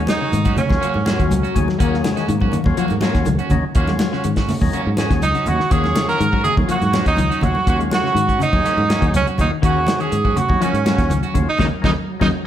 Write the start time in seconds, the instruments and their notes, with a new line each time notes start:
Already playing: tonewheel organ F#3 C#4 G#4
0.07 clean electric guitar F#3, tenor saxophone D#4, trumpet D#4, snare, closed hi-hat, high conga
0.20 clean electric guitar C#3 F#4
0.32 fingered electric bass G#2, clean electric guitar D#3, closed hi-hat, low conga
0.45 clean electric guitar C#4 F#4, kick, closed hi-hat, high conga
0.57 clean electric guitar C#3, tenor saxophone C#4, trumpet C#4, closed hi-hat, low conga
0.69 fingered electric bass D#2, tonewheel organ F#3 C#4 F4, kick, snare, high conga
0.81 clean electric guitar A#3 C#4 F#4, muted fingered electric bass stroke, closed hi-hat
0.94 fingered electric bass G#2, high conga
1.05 tonewheel organ F#3 C#4 F4, trombone section F#3, clean electric guitar A#3 C#4 F#4, snare, closed hi-hat, high conga
1.19 fingered electric bass D#2, clean electric guitar D#3, kick, closed hi-hat
1.31 fingered electric bass C#2, closed hi-hat, high conga, low conga
1.43 clean electric guitar C#4 F#4, closed hi-hat
1.55 fingered electric bass D#2, tonewheel organ F#3 C#4 G#4, kick, closed hi-hat, low conga
1.68 clean electric guitar D#3, snare, high conga
1.78 fingered electric bass D#2, clean electric guitar D#3 A#3 C#4 F#4, tonewheel organ F#3 C#4 G#4, trombone section A#3, kick, closed hi-hat
1.94 snare
2.04 clean electric guitar C#3, trombone section G#3, snare, closed hi-hat, high conga
2.16 clean electric guitar D#3 C#4 F#4, snare, closed hi-hat
2.28 fingered electric bass G#2, clean electric guitar D#3, trombone section A#3, closed hi-hat, low conga
2.40 clean electric guitar F#3 C#4 F#4, kick, high conga
2.52 clean electric guitar D#3, closed hi-hat, low conga
2.64 fingered electric bass D#2, tonewheel organ F#3 C#4 F4, kick, high conga
2.77 clean electric guitar F3 A#3 F#4, muted clean electric guitar stroke, muted fingered electric bass stroke, closed hi-hat
2.88 fingered electric bass G#2, closed hi-hat, high conga
3.01 clean electric guitar F#3 A#3 C#4 F#4, tonewheel organ F#3 C#4 F4, snare, closed hi-hat, high conga
3.15 fingered electric bass D#2, kick, snare, closed hi-hat
3.25 fingered electric bass C#2, clean electric guitar D#3, closed hi-hat, high conga, low conga
3.39 clean electric guitar C#4 F#4, closed hi-hat
3.50 fingered electric bass D#2, clean electric guitar C#3, tonewheel organ F#3 C#4 D#4, kick, closed hi-hat, low conga
3.75 fingered electric bass D#2, tonewheel organ F#3 C#4 F4, clean electric guitar A#3 C#4 F#4, kick, closed hi-hat
3.87 clean electric guitar G#3, snare, closed hi-hat, high conga
3.99 clean electric guitar F#3, snare, closed hi-hat, high conga
4.13 clean electric guitar C#3 C#4 F#4, snare
4.24 fingered electric bass G#2, clean electric guitar D#3, closed hi-hat
4.36 clean electric guitar C#4 F#4, kick, snare, closed hi-hat
4.48 clean electric guitar C#3, snare, open hi-hat, low conga
4.61 fingered electric bass D#2, tonewheel organ F#3 C#4 D#4, kick, high conga
4.73 clean electric guitar A#3 C#4 F#4, muted fingered electric bass stroke, closed hi-hat
4.86 fingered electric bass G#2
4.97 tonewheel organ F#3 C#4 G#4, clean electric guitar C#4 F#4, muted clean electric guitar stroke, snare, closed hi-hat, high conga
5.10 fingered electric bass D#2, clean electric guitar D#3, kick, snare, closed hi-hat
5.22 fingered electric bass C#2, tenor saxophone D#4, trumpet D#4, closed hi-hat, high conga
5.34 clean electric guitar C#3 C#4 F#4, closed hi-hat
5.46 fingered electric bass D#2, tonewheel organ F#3 C#4 D#4, trumpet F#4, tenor saxophone F#4, closed hi-hat, low conga
5.60 clean electric guitar D#3, snare
5.70 fingered electric bass D#2, clean electric guitar D#3 A#3 C#4 F#4, tonewheel organ F#3 C#4 F4, tenor saxophone G#4, trumpet C#5, kick, closed hi-hat
5.84 snare, high conga
5.96 clean electric guitar C#3, snare, closed hi-hat, high conga
6.08 clean electric guitar D#3 C#4 F#4, tenor saxophone A#4, trumpet A#4, snare, closed hi-hat
6.20 fingered electric bass G#2, clean electric guitar D#3, closed hi-hat
6.32 clean electric guitar F#3 C#4 F#4, kick
6.44 clean electric guitar D#3, tenor saxophone G#4, trumpet G#4, closed hi-hat, low conga
6.57 fingered electric bass D#2, tonewheel organ F#3 C#4 F4, kick, high conga
6.68 clean electric guitar F3 A#3, trumpet F#4, tenor saxophone F#4, muted clean electric guitar stroke, muted fingered electric bass stroke, closed hi-hat
6.82 fingered electric bass G#2, closed hi-hat, high conga
6.93 clean electric guitar F#3 A#3 C#4 F#4, tonewheel organ F#3 C#4 F4, snare, closed hi-hat, high conga
7.06 fingered electric bass D#2, tenor saxophone D#4, trumpet D#4, kick, snare, closed hi-hat
7.17 fingered electric bass C#2, clean electric guitar D#3, closed hi-hat, high conga
7.30 clean electric guitar C#4 F#4, closed hi-hat
7.41 fingered electric bass D#2, clean electric guitar C#3, tonewheel organ F#3 C#4 F4, tenor saxophone F#4, trumpet F#4, kick, closed hi-hat, low conga
7.55 high conga
7.66 fingered electric bass D#2, tonewheel organ F#3 C#4 F4, clean electric guitar A#3 C#4 F#4, trumpet F#4, tenor saxophone F#4, kick, closed hi-hat
7.79 clean electric guitar G#3, closed hi-hat
7.91 clean electric guitar F#3, trumpet F#4, tenor saxophone F#4, snare, closed hi-hat, high conga
8.03 clean electric guitar C#3 C#4 F#4, snare
8.15 fingered electric bass G#2, clean electric guitar D#3, closed hi-hat
8.28 clean electric guitar C#4 F#4, kick, closed hi-hat
8.39 clean electric guitar C#3, trumpet D#4, tenor saxophone D#4, closed hi-hat, low conga
8.53 fingered electric bass D#2, tonewheel organ F#3 C#4 G#4, kick, high conga
8.64 clean electric guitar A#3 C#4 F#4, muted fingered electric bass stroke, snare, closed hi-hat
8.77 fingered electric bass G#2, high conga
8.89 tonewheel organ F#3 C#4 G#4, clean electric guitar A#3 C#4 F#4, snare, closed hi-hat, high conga
9.01 fingered electric bass D#2, clean electric guitar D#3, kick, closed hi-hat
9.13 fingered electric bass C#2, trumpet C#4, tenor saxophone C#4, closed hi-hat, high conga, low conga
9.26 clean electric guitar C#4 F#4, muted clean electric guitar stroke, closed hi-hat
9.38 fingered electric bass D#2, tonewheel organ F#3 C#4 F4, trumpet D#4, tenor saxophone D#4, kick, closed hi-hat, low conga
9.51 clean electric guitar D#3
9.62 fingered electric bass D#2, clean electric guitar D#3 A#3 C#4 F#4, tonewheel organ F#3 C#4 G#4, trumpet F#4, tenor saxophone F#4, kick, closed hi-hat
9.87 clean electric guitar C#3, snare, closed hi-hat, high conga
10.00 clean electric guitar D#3 C#4 F#4, tenor saxophone G#4, trumpet G#4, closed hi-hat
10.12 fingered electric bass G#2, clean electric guitar D#3, closed hi-hat
10.25 clean electric guitar F#3 C#4 F#4, kick, high conga
10.36 clean electric guitar C#3, tenor saxophone F#4, trumpet F#4, closed hi-hat, low conga
10.48 fingered electric bass D#2, tonewheel organ F#3 C#4 D#4, kick, high conga
10.61 clean electric guitar F3 A#3 C#4 F#4, tenor saxophone C#4, trumpet C#4, closed hi-hat
10.73 fingered electric bass G#2, closed hi-hat
10.85 tonewheel organ F#3 C#4 F#4, clean electric guitar F#3 A#3 C#4 F#4, snare, closed hi-hat, high conga
10.98 fingered electric bass D#2, kick, snare, closed hi-hat
11.10 fingered electric bass C#2, clean electric guitar D#3, closed hi-hat, high conga, low conga
11.23 clean electric guitar C#4 F#4, closed hi-hat
11.34 fingered electric bass D#2, clean electric guitar C#3, tonewheel organ F#3 C#4 F4, kick, closed hi-hat, low conga
11.49 trumpet D#4, tenor saxophone D#4
11.58 fingered electric bass D#2, clean electric guitar C#3 D#3 F#3 A#3 C#4 D#4, tonewheel organ A#3 C#4 D#4, trumpet D#4, tenor saxophone D#4, kick, snare, high conga
11.82 fingered electric bass D#2, clean electric guitar C#3 D#3 F#3 A#3 C#4 D#4, tonewheel organ A#3 C#4 D#4, tenor saxophone D#4, trumpet D#4, kick, snare, high conga
12.09 trombone section F#3
12.20 fingered electric bass D#2, clean electric guitar C#3 D#3 F#3 A#3 C#4 D#4, tonewheel organ A#3 C#4 D#4, tenor saxophone D#4, trumpet D#4, kick, snare, high conga